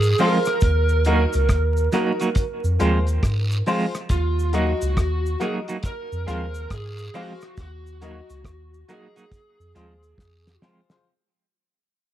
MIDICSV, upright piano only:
0, 0, Header, 1, 2, 480
1, 0, Start_track
1, 0, Tempo, 869061
1, 346, Time_signature, 4, 2, 24, 8
1, 6701, End_track
2, 0, Start_track
2, 0, Title_t, "Upright piano"
2, 0, Program_c, 0, 0
2, 107, Note_on_c, 0, 65, 81
2, 111, Note_on_c, 0, 68, 78
2, 113, Note_on_c, 0, 72, 95
2, 242, Note_off_c, 0, 65, 0
2, 244, Note_off_c, 0, 68, 0
2, 245, Note_off_c, 0, 72, 0
2, 587, Note_on_c, 0, 63, 86
2, 590, Note_on_c, 0, 66, 85
2, 594, Note_on_c, 0, 70, 102
2, 722, Note_off_c, 0, 63, 0
2, 723, Note_off_c, 0, 66, 0
2, 725, Note_off_c, 0, 70, 0
2, 1065, Note_on_c, 0, 63, 91
2, 1067, Note_on_c, 0, 66, 81
2, 1073, Note_on_c, 0, 70, 92
2, 1200, Note_off_c, 0, 63, 0
2, 1202, Note_off_c, 0, 66, 0
2, 1204, Note_off_c, 0, 70, 0
2, 1544, Note_on_c, 0, 65, 87
2, 1547, Note_on_c, 0, 68, 78
2, 1551, Note_on_c, 0, 72, 91
2, 1680, Note_off_c, 0, 65, 0
2, 1681, Note_off_c, 0, 68, 0
2, 1684, Note_off_c, 0, 72, 0
2, 2024, Note_on_c, 0, 65, 84
2, 2026, Note_on_c, 0, 68, 80
2, 2030, Note_on_c, 0, 72, 90
2, 2160, Note_off_c, 0, 65, 0
2, 2161, Note_off_c, 0, 68, 0
2, 2163, Note_off_c, 0, 72, 0
2, 2502, Note_on_c, 0, 66, 90
2, 2504, Note_on_c, 0, 70, 79
2, 2506, Note_on_c, 0, 75, 105
2, 2639, Note_off_c, 0, 66, 0
2, 2640, Note_off_c, 0, 70, 0
2, 2641, Note_off_c, 0, 75, 0
2, 2980, Note_on_c, 0, 66, 91
2, 2983, Note_on_c, 0, 70, 88
2, 2987, Note_on_c, 0, 75, 94
2, 3118, Note_off_c, 0, 66, 0
2, 3119, Note_off_c, 0, 70, 0
2, 3122, Note_off_c, 0, 75, 0
2, 3460, Note_on_c, 0, 68, 93
2, 3465, Note_on_c, 0, 72, 74
2, 3467, Note_on_c, 0, 77, 94
2, 3598, Note_off_c, 0, 68, 0
2, 3601, Note_off_c, 0, 72, 0
2, 3602, Note_off_c, 0, 77, 0
2, 3945, Note_on_c, 0, 68, 85
2, 3949, Note_on_c, 0, 72, 75
2, 3953, Note_on_c, 0, 77, 90
2, 4081, Note_off_c, 0, 68, 0
2, 4083, Note_off_c, 0, 72, 0
2, 4084, Note_off_c, 0, 77, 0
2, 4426, Note_on_c, 0, 66, 91
2, 4430, Note_on_c, 0, 70, 79
2, 4432, Note_on_c, 0, 75, 103
2, 4561, Note_off_c, 0, 66, 0
2, 4563, Note_off_c, 0, 70, 0
2, 4564, Note_off_c, 0, 75, 0
2, 4906, Note_on_c, 0, 66, 87
2, 4911, Note_on_c, 0, 70, 82
2, 4914, Note_on_c, 0, 75, 94
2, 5041, Note_off_c, 0, 66, 0
2, 5043, Note_off_c, 0, 70, 0
2, 5045, Note_off_c, 0, 75, 0
2, 5386, Note_on_c, 0, 65, 79
2, 5389, Note_on_c, 0, 68, 81
2, 5393, Note_on_c, 0, 72, 87
2, 5521, Note_off_c, 0, 65, 0
2, 5522, Note_off_c, 0, 68, 0
2, 5524, Note_off_c, 0, 72, 0
2, 5868, Note_on_c, 0, 65, 85
2, 5871, Note_on_c, 0, 68, 74
2, 5875, Note_on_c, 0, 72, 95
2, 6001, Note_off_c, 0, 65, 0
2, 6003, Note_off_c, 0, 68, 0
2, 6005, Note_off_c, 0, 72, 0
2, 6021, Note_on_c, 0, 65, 73
2, 6022, Note_on_c, 0, 68, 68
2, 6026, Note_on_c, 0, 72, 82
2, 6096, Note_off_c, 0, 65, 0
2, 6097, Note_off_c, 0, 68, 0
2, 6099, Note_off_c, 0, 72, 0
2, 6701, End_track
0, 0, End_of_file